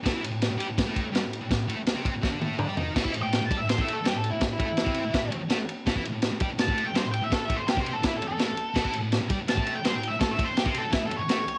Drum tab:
CC |----------------|----------------|x---------------|----------------|
RD |x-x-x-x-x-x-x-x-|x-x-x-x---------|--x-x-x-x-x-x-x-|x-x-x-x-x-x-x-x-|
SD |o---o---o---o---|o---o---o-------|o---o---o---o---|o---o---o---o---|
T1 |----------------|----------o-----|----------------|----------------|
T2 |----------------|------------o---|----------------|----------------|
FT |----------------|--------------o-|----------------|----------------|
BD |o-------o-o-----|o-----o-o-------|oo----o--o------|o-o--o--o-------|

CC |----------------|----------------|x---------------|----------------|
RD |x-x-x-x-x-x-x-x-|x-x-x-x-x-x-x-x-|--x-x-x-x-x-x-x-|x-x-x-x-x-x-x-x-|
SD |o---o---o---o---|o---o---o---o---|o---o---o---o---|o---o---o---o---|
T1 |----------------|----------------|----------------|----------------|
T2 |----------------|----------------|----------------|----------------|
FT |----------------|----------------|----------------|----------------|
BD |oo----o--o------|o-o--o--o-------|oo----o--o------|o-o--o--o-------|